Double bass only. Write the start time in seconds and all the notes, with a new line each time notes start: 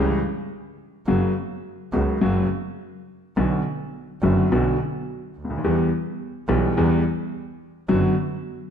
Already playing: C#2
1.07 F#1
1.93 C#2
2.22 F#1
3.37 B1
4.22 F#1
4.51 B1
5.35 D2
5.63 E2
6.48 B1
6.76 E2
7.89 F#1